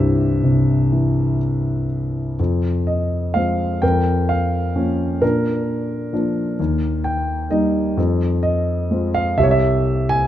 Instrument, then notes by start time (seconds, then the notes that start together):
grand piano
Already playing: C2 G2 E4 G4 C5 E5
0.44 C3
0.92 E3
2.39 F2
2.87 D#5
3.34 F3 G#3 C4 F5
3.82 F2 A#4 G5
4.29 F5
4.76 F3 A#3 C#4
5.22 A#2 D4 A#4
6.13 F3 A#3 D4
6.59 D#2
7.04 G5
7.50 G3 A#3 D#4 D#5
7.97 F2
8.43 D#5
8.91 G#3 C4 F4
9.14 F5
9.38 C2 G4 E5
9.44 C#5
9.51 E5
10.09 G#5